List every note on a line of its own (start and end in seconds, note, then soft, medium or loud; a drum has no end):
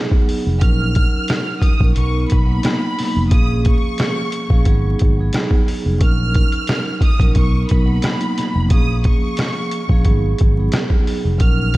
0.00 0.55 F#3 loud
0.00 0.56 B3 medium
0.00 0.56 D#4 medium
0.00 0.57 G#4 loud
0.12 kick medium
0.29 open hi-hat medium
0.47 0.59 F1 medium
0.59 1.04 A#1 loud
0.59 1.70 F#3 medium
0.59 1.70 C#4 medium
0.59 1.71 D#4 medium
0.59 1.71 A#4 loud
0.59 1.58 F6 loud
0.59 kick loud
0.59 closed hi-hat loud
0.95 kick loud
0.95 closed hi-hat medium
1.28 cross-stick medium
1.28 snare loud
1.28 closed hi-hat medium
1.61 1.92 D#6 medium
1.61 kick loud
1.61 closed hi-hat medium
1.80 1.93 A#1 medium
1.80 1.94 F#3 medium
1.80 1.97 C#4 medium
1.80 1.96 D#4 medium
1.80 1.97 A#4 loud
1.80 kick medium
1.95 2.24 B1 loud
1.95 2.43 F#3 medium
1.95 2.44 B3 medium
1.95 2.44 D#4 medium
1.95 2.45 A#4 loud
1.95 2.27 C#6 medium
1.95 closed hi-hat medium
2.30 2.59 B1 medium
2.30 3.27 B5 medium
2.30 kick medium
2.30 closed hi-hat medium
2.46 2.93 F#3 medium
2.46 2.94 A#3 loud
2.46 2.93 B3 medium
2.46 2.94 D#4 medium
2.63 cross-stick medium
2.63 snare loud
2.63 closed hi-hat medium
2.96 3.28 F#3 medium
2.96 3.29 A#3 medium
2.96 3.28 B3 medium
2.96 3.29 D#4 medium
2.96 open hi-hat medium
3.00 snare soft
3.16 3.29 F1 loud
3.30 3.73 A#1 loud
3.30 4.40 F3 medium
3.30 4.40 A#3 medium
3.30 4.41 C#4 medium
3.30 4.41 G#4 loud
3.30 3.61 D#6 medium
3.30 kick loud
3.30 closed hi-hat loud
3.65 4.81 C#6 medium
3.65 kick loud
3.65 closed hi-hat medium
3.98 cross-stick medium
3.98 snare loud
3.98 closed hi-hat medium
4.32 closed hi-hat medium
4.49 4.63 A#1 medium
4.49 4.66 F3 loud
4.49 4.66 A#3 medium
4.49 4.66 C#4 medium
4.49 4.66 G#4 loud
4.49 kick medium
4.65 4.93 G#1 loud
4.65 5.13 F#3 loud
4.65 5.13 B3 medium
4.65 5.14 D#4 medium
4.65 5.14 G#4 loud
4.65 kick medium
4.65 closed hi-hat medium
4.99 5.28 G#1 medium
4.99 kick medium
4.99 closed hi-hat medium
5.18 5.95 F#3 loud
5.18 5.95 B3 medium
5.18 5.96 D#4 medium
5.18 5.96 G#4 loud
5.33 cross-stick medium
5.33 snare loud
5.33 closed hi-hat medium
5.51 kick medium
5.68 open hi-hat medium
5.86 5.98 F1 medium
5.99 6.43 A#1 loud
5.99 7.09 F#3 medium
5.99 7.09 C#4 medium
5.99 7.10 D#4 medium
5.99 7.10 A#4 loud
5.99 6.98 F6 loud
5.99 kick loud
5.99 closed hi-hat loud
6.34 kick loud
6.34 closed hi-hat medium
6.52 closed hi-hat medium
6.67 cross-stick medium
6.67 snare loud
6.67 closed hi-hat medium
7.01 7.33 D#6 medium
7.01 kick loud
7.01 closed hi-hat medium
7.19 7.33 A#1 medium
7.19 7.33 F#3 medium
7.19 7.36 C#4 medium
7.19 7.35 D#4 medium
7.19 7.36 A#4 loud
7.19 kick loud
7.19 closed hi-hat medium
7.35 7.63 B1 loud
7.35 7.83 F#3 medium
7.35 7.83 B3 medium
7.35 7.84 D#4 medium
7.35 7.84 A#4 loud
7.35 7.66 C#6 medium
7.35 kick medium
7.35 closed hi-hat medium
7.69 7.98 B1 medium
7.69 8.67 B5 medium
7.69 kick medium
7.69 closed hi-hat medium
7.86 8.32 F#3 medium
7.86 8.34 A#3 loud
7.86 8.33 B3 medium
7.86 8.33 D#4 medium
8.02 cross-stick medium
8.02 snare loud
8.02 closed hi-hat medium
8.21 closed hi-hat medium
8.35 8.67 F#3 medium
8.35 8.69 A#3 medium
8.35 8.68 B3 medium
8.35 8.68 D#4 medium
8.35 snare soft
8.35 closed hi-hat medium
8.56 8.68 F1 loud
8.70 9.13 A#1 loud
8.70 9.79 F3 medium
8.70 9.80 A#3 medium
8.70 9.80 C#4 medium
8.70 9.81 G#4 loud
8.70 9.01 D#6 medium
8.70 kick loud
8.70 closed hi-hat loud
9.04 10.20 C#6 medium
9.04 kick loud
9.04 closed hi-hat medium
9.37 cross-stick medium
9.37 snare loud
9.37 closed hi-hat medium
9.71 closed hi-hat medium
9.89 10.02 A#1 medium
9.89 10.05 F3 loud
9.89 10.05 A#3 medium
9.89 10.06 C#4 medium
9.89 10.06 G#4 loud
9.89 kick medium
10.04 10.33 G#1 loud
10.04 10.52 F#3 loud
10.04 10.53 B3 medium
10.04 10.53 D#4 medium
10.04 10.54 G#4 loud
10.04 kick medium
10.04 closed hi-hat medium
10.38 10.68 G#1 medium
10.38 kick medium
10.38 closed hi-hat medium
10.57 11.34 F#3 medium
10.57 11.34 B3 medium
10.57 11.35 D#4 medium
10.57 11.35 G#4 loud
10.72 cross-stick medium
10.72 snare loud
10.72 closed hi-hat medium
10.90 kick medium
11.07 open hi-hat medium
11.25 11.37 F1 medium
11.38 11.77 A#1 loud
11.38 11.77 F#3 medium
11.38 11.77 C#4 medium
11.38 11.77 D#4 medium
11.38 11.77 A#4 loud
11.38 11.77 F6 loud
11.38 kick loud
11.38 closed hi-hat loud
11.74 closed hi-hat medium